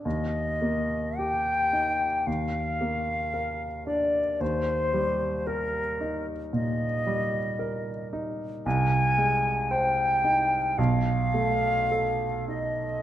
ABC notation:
X:1
M:4/4
L:1/16
Q:1/4=56
K:Eb
V:1 name="Flute"
e4 g4 f6 d2 | c4 B3 z e6 z2 | a4 g4 f6 ^d2 |]
V:2 name="Grand piano"
E,,2 B,2 G2 E2 E,,2 B,2 B2 D2 | E,,2 G,2 B2 E2 B,,2 G,2 B2 E2 | C,,2 A,2 c2 E2 =B,,,2 =A,2 =A2 ^D2 |]